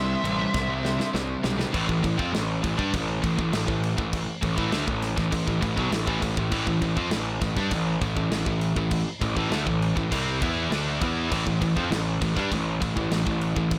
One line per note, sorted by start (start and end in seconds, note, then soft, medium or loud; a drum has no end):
0.00 0.15 C2 medium
0.00 0.21 C3 medium
0.00 0.21 G3 medium
0.00 0.23 C4 medium
0.00 1.09 C5 medium
0.00 1.10 E5 medium
0.24 0.45 A1 medium
0.24 0.38 C3 medium
0.24 0.38 G3 medium
0.24 0.54 C4 loud
0.24 ride medium
0.39 0.52 C3 medium
0.39 0.53 G3 medium
0.53 0.97 C2 medium
0.53 0.67 C3 medium
0.53 0.67 G3 medium
0.53 0.84 C4 loud
0.53 kick loud
0.53 snare medium
0.69 0.83 C3 medium
0.69 0.82 G3 medium
0.83 0.98 C3 medium
0.83 0.97 G3 medium
0.83 1.14 C4 loud
0.83 snare medium
0.99 1.12 C3 medium
0.99 1.13 G3 medium
0.99 snare medium
1.14 1.35 C2 medium
1.14 1.40 C3 medium
1.14 1.41 G3 medium
1.14 1.43 C4 loud
1.14 snare medium
1.44 1.65 B1 medium
1.44 1.58 C3 medium
1.44 1.57 G3 medium
1.44 1.72 C4 loud
1.44 snare loud
1.58 1.73 C3 medium
1.58 1.73 G3 medium
1.58 snare medium
1.74 1.88 A1 loud
1.74 1.87 A2 medium
1.74 1.88 E3 loud
1.74 kick loud
1.74 crash medium
1.88 2.02 A1 medium
1.88 2.02 A2 medium
1.88 2.03 E3 medium
1.88 kick medium
2.03 2.18 A1 medium
2.03 2.17 A2 medium
2.03 2.18 E3 medium
2.03 kick medium
2.03 crash medium
2.18 2.32 F2 medium
2.18 2.32 F3 medium
2.18 2.33 C4 loud
2.18 kick medium
2.33 2.61 A1 medium
2.33 2.57 A2 medium
2.33 2.57 E3 medium
2.33 snare loud
2.33 crash medium
2.64 2.78 A1 medium
2.64 2.78 A2 medium
2.64 2.78 E3 medium
2.64 kick medium
2.64 crash medium
2.78 2.92 G2 loud
2.78 2.92 G3 medium
2.78 2.92 D4 loud
2.78 kick medium
2.94 3.21 A1 medium
2.94 3.17 A2 medium
2.94 3.17 E3 medium
2.94 kick loud
2.94 crash medium
3.24 3.37 A1 medium
3.24 3.37 A2 medium
3.24 3.38 E3 medium
3.24 kick medium
3.24 crash medium
3.39 3.52 A1 medium
3.39 3.52 A2 medium
3.39 3.52 E3 medium
3.39 kick medium
3.53 3.67 A1 medium
3.53 3.66 A2 medium
3.53 3.67 E3 medium
3.53 snare loud
3.53 crash medium
3.67 3.96 A1 medium
3.67 3.92 A2 medium
3.67 3.92 E3 medium
3.67 kick medium
3.83 crash medium
3.98 4.26 A1 medium
3.98 4.22 A2 medium
3.98 4.22 E3 medium
3.98 kick medium
4.13 kick loud
4.13 crash medium
4.43 4.57 A1 medium
4.43 4.56 A2 medium
4.43 4.58 E3 medium
4.43 kick medium
4.43 crash medium
4.58 4.72 A1 medium
4.58 4.72 A2 medium
4.58 4.72 E3 loud
4.58 kick medium
4.72 4.87 D2 medium
4.72 4.86 D3 loud
4.72 4.87 A3 loud
4.72 snare loud
4.72 crash medium
4.87 5.16 A1 medium
4.87 5.11 A2 medium
4.87 5.11 E3 medium
4.87 kick medium
5.02 snare soft
5.02 crash medium
5.17 5.31 A1 medium
5.17 5.31 A2 medium
5.17 5.31 E3 medium
5.17 kick medium
5.17 snare soft
5.32 5.47 A1 medium
5.32 5.46 A2 medium
5.32 5.46 E3 medium
5.32 kick loud
5.32 crash medium
5.47 5.61 A1 medium
5.47 5.60 A2 medium
5.47 5.60 E3 medium
5.47 kick medium
5.61 5.76 A1 medium
5.61 5.76 A2 medium
5.61 5.76 E3 medium
5.61 kick medium
5.61 crash medium
5.76 5.91 B1 medium
5.76 5.91 B2 medium
5.76 5.91 F#3 loud
5.76 kick medium
5.91 6.06 A1 medium
5.91 6.05 A2 medium
5.91 6.06 E3 medium
5.91 snare loud
5.91 crash medium
6.06 6.21 A1 loud
6.06 6.20 A2 loud
6.06 6.21 E3 loud
6.06 kick loud
6.21 6.36 A1 medium
6.21 6.36 A2 medium
6.21 6.36 E3 medium
6.21 kick medium
6.21 crash medium
6.37 6.51 A1 medium
6.37 6.51 A2 medium
6.37 6.51 E3 medium
6.37 kick medium
6.52 6.66 A1 loud
6.52 6.66 A2 loud
6.52 6.67 E3 loud
6.52 kick loud
6.52 crash medium
6.67 6.81 A1 medium
6.67 6.81 A2 medium
6.67 6.81 E3 medium
6.67 kick medium
6.82 6.96 A1 medium
6.82 6.97 A2 medium
6.82 6.97 E3 medium
6.82 kick medium
6.82 crash medium
6.97 7.11 F2 medium
6.97 7.11 F3 medium
6.97 7.11 C4 loud
6.97 kick medium
7.11 7.40 A1 medium
7.11 7.36 A2 medium
7.11 7.36 E3 medium
7.11 snare loud
7.11 crash medium
7.42 7.56 A1 medium
7.42 7.57 A2 medium
7.42 7.57 E3 medium
7.42 kick loud
7.42 snare soft
7.42 crash medium
7.56 7.71 G2 loud
7.56 7.71 G3 medium
7.56 7.71 D4 loud
7.56 kick medium
7.56 snare soft
7.71 7.99 A1 medium
7.71 7.96 A2 medium
7.71 7.96 E3 medium
7.71 kick loud
7.71 crash medium
8.01 8.16 A1 medium
8.01 8.15 A2 medium
8.01 8.16 E3 medium
8.01 kick loud
8.01 crash medium
8.16 8.30 A1 medium
8.16 8.30 A2 medium
8.16 8.31 E3 medium
8.16 kick medium
8.31 8.45 A1 medium
8.31 8.46 A2 medium
8.31 8.47 E3 medium
8.31 snare loud
8.31 crash medium
8.46 8.74 A1 medium
8.46 8.71 A2 medium
8.46 8.71 E3 medium
8.46 kick medium
8.61 crash medium
8.76 9.04 A1 medium
8.76 9.01 A2 medium
8.76 9.02 E3 medium
8.76 kick medium
8.91 kick loud
8.91 crash medium
9.22 9.36 A1 medium
9.22 9.36 A2 medium
9.22 9.37 E3 medium
9.22 kick medium
9.22 crash medium
9.37 9.51 A1 medium
9.37 9.51 A2 medium
9.37 9.51 E3 medium
9.37 kick medium
9.51 9.66 D2 loud
9.51 9.66 D3 medium
9.51 9.66 A3 loud
9.51 snare loud
9.51 crash medium
9.67 9.95 A1 medium
9.67 9.91 A2 medium
9.67 9.91 E3 medium
9.67 kick medium
9.82 crash medium
9.96 10.11 A1 medium
9.96 10.11 A2 medium
9.96 10.12 E3 medium
9.96 kick medium
10.11 10.40 C2 loud
10.11 10.40 C3 loud
10.11 10.41 G3 loud
10.11 10.41 C4 loud
10.11 kick medium
10.11 crash medium
10.41 10.70 E2 loud
10.41 10.70 E3 medium
10.41 10.71 B3 loud
10.41 10.71 E4 medium
10.41 kick loud
10.41 crash medium
10.71 10.99 D2 loud
10.71 11.00 D3 medium
10.71 11.01 A3 loud
10.71 11.01 D4 loud
10.71 snare loud
10.71 crash medium
11.01 11.29 E2 loud
11.01 11.30 E3 medium
11.01 11.31 B3 medium
11.01 11.31 E4 loud
11.01 kick loud
11.01 crash medium
11.31 11.46 A1 loud
11.31 11.45 A2 medium
11.31 11.45 E3 medium
11.31 kick loud
11.31 crash loud
11.46 11.61 A1 medium
11.46 11.60 A2 medium
11.46 11.60 E3 medium
11.46 kick medium
11.61 11.75 A1 medium
11.61 11.75 A2 medium
11.61 11.76 E3 medium
11.61 kick medium
11.61 crash medium
11.76 11.91 F2 medium
11.76 11.90 F3 medium
11.76 11.91 C4 loud
11.76 kick medium
11.91 12.19 A1 medium
11.91 12.16 A2 medium
11.91 12.16 E3 medium
11.91 snare loud
11.91 crash medium
12.22 12.36 A1 medium
12.22 12.37 A2 medium
12.22 12.36 E3 medium
12.22 kick loud
12.22 crash medium
12.36 12.51 G2 loud
12.36 12.51 G3 medium
12.36 12.51 D4 loud
12.36 kick medium
12.36 snare soft
12.52 12.80 A1 medium
12.52 12.76 A2 medium
12.52 12.76 E3 medium
12.52 kick medium
12.52 crash medium
12.81 12.96 A1 medium
12.81 12.95 A2 medium
12.81 12.96 E3 medium
12.81 kick medium
12.81 crash medium
12.96 13.11 A1 medium
12.96 13.10 A2 medium
12.96 13.11 E3 medium
12.96 kick medium
13.12 13.26 A1 medium
13.12 13.25 A2 medium
13.12 13.26 E3 medium
13.12 snare loud
13.12 crash medium
13.26 13.54 A1 medium
13.26 13.51 A2 medium
13.26 13.51 E3 medium
13.26 kick medium
13.41 crash medium
13.56 13.79 A1 medium
13.56 13.79 A2 medium
13.56 13.79 E3 medium
13.56 kick loud
13.71 kick loud
13.71 crash medium